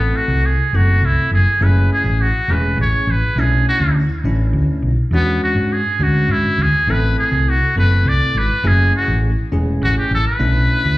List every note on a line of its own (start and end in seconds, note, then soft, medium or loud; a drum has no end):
0.00 0.11 A1 medium
0.00 0.50 A3 medium
0.00 0.19 B3 medium
0.00 0.50 C4 medium
0.00 0.51 E4 medium
0.00 0.51 A4 medium
0.17 0.47 F#4 medium
0.28 0.55 C2 medium
0.46 0.78 G#4 medium
0.73 1.00 F#1 medium
0.73 1.38 A3 medium
0.73 1.38 C4 medium
0.73 1.38 E4 medium
0.73 1.07 F#4 medium
0.73 1.39 A4 medium
1.02 1.15 C2 medium
1.06 1.32 E4 medium
1.17 muted fingered electric bass stroke soft
1.31 1.45 F#1 medium
1.31 1.64 G#4 medium
1.61 1.88 F#1 medium
1.61 2.26 A3 medium
1.61 2.26 C#4 medium
1.61 2.26 E4 medium
1.61 2.26 G#4 medium
1.61 1.90 B4 medium
1.93 2.23 G#4 medium
2.04 2.31 A1 medium
2.22 2.54 F#4 medium
2.48 2.75 E1 medium
2.48 3.14 A3 medium
2.48 3.14 C#4 medium
2.48 3.14 E4 medium
2.48 3.15 G#4 medium
2.48 2.79 B4 medium
2.78 2.91 A1 loud
2.78 3.13 C#5 medium
2.93 muted fingered electric bass stroke soft
3.07 3.21 A1 medium
3.07 3.42 B4 medium
3.36 3.63 B1 medium
3.36 4.01 A3 medium
3.36 4.02 C#4 medium
3.36 4.02 D4 medium
3.36 4.02 E4 medium
3.40 3.67 G#4 medium
3.69 3.96 F#4 medium
3.80 4.07 D2 medium
4.24 4.51 A1 medium
4.24 4.89 A3 medium
4.24 4.90 C#4 medium
4.24 4.90 D4 medium
4.24 4.90 E4 medium
4.53 4.67 D2 loud
4.67 muted fingered electric bass stroke soft
4.82 4.96 B1 medium
5.11 5.38 E2 medium
5.11 5.77 G#3 medium
5.11 5.42 B3 loud
5.11 5.78 C#4 medium
5.11 5.78 D4 medium
5.11 5.78 F#4 medium
5.44 5.75 F#4 medium
5.55 5.83 G#2 medium
5.73 6.05 G#4 medium
5.99 6.27 D2 medium
5.99 6.65 G#3 medium
5.99 6.65 C#4 medium
5.99 6.65 D4 medium
5.99 6.66 F#4 medium
5.99 6.33 F#4 medium
6.29 6.43 G#2 medium
6.29 6.64 E4 loud
6.43 muted fingered electric bass stroke soft
6.58 6.72 D2 medium
6.63 6.92 G#4 medium
6.87 7.14 A1 medium
6.87 7.53 A3 medium
6.87 7.53 C4 medium
6.87 7.53 E4 medium
6.87 7.54 A4 medium
6.87 7.18 B4 medium
7.19 7.51 G#4 medium
7.32 7.59 C2 medium
7.50 7.77 F#4 medium
7.76 8.03 F#1 medium
7.76 8.41 A3 medium
7.76 8.41 C4 medium
7.76 8.41 E4 medium
7.76 8.42 A4 medium
7.76 8.10 B4 medium
8.05 8.19 C2 medium
8.05 8.40 D5 loud
8.20 muted fingered electric bass stroke soft
8.35 8.48 G#1 medium
8.35 8.69 B4 loud
8.63 8.91 F#1 loud
8.63 9.29 A3 medium
8.63 9.29 C#4 medium
8.63 9.29 E4 medium
8.63 9.29 G#4 medium
8.68 8.94 G#4 loud
8.96 9.23 F#4 medium
9.08 9.35 A1 medium
9.52 9.79 E1 medium
9.52 10.17 A3 medium
9.52 10.17 C#4 medium
9.52 10.17 E4 medium
9.52 10.17 G#4 medium
9.82 9.95 A1 loud
9.82 9.97 F#4 loud
9.97 10.11 G4 medium
9.97 muted fingered electric bass stroke soft
10.11 10.24 A1 medium
10.11 10.26 A4 loud
10.28 10.98 B4 loud
10.39 10.67 B1 medium
10.39 10.98 A3 medium
10.39 10.98 C#4 medium
10.39 10.98 D4 medium
10.39 10.98 E4 medium
10.84 10.98 D2 medium